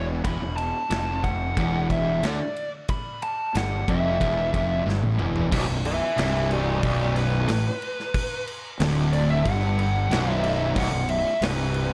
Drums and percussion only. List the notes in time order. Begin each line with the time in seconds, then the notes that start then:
0.25 kick, ride
0.58 ride
0.91 snare, ride
1.24 kick, ride
1.57 kick, ride
1.90 kick, ride
2.23 snare, ride
2.56 ride
2.89 kick, ride
3.22 ride
3.55 snare, ride
3.88 kick, ride
4.21 kick, ride
4.54 kick, ride
4.89 snare
5.03 high tom
5.19 mid tom
5.36 floor tom
5.52 kick, crash
5.85 crash
6.18 snare, crash
6.51 crash
6.83 kick, crash
7.16 crash
7.48 snare, crash
7.82 crash
8.00 snare
8.14 kick, crash
8.47 crash
8.80 snare, crash
9.13 crash
9.46 kick, crash
9.79 crash
10.11 snare, crash
10.44 crash
10.76 kick, crash
11.09 crash
11.42 snare, crash
11.74 crash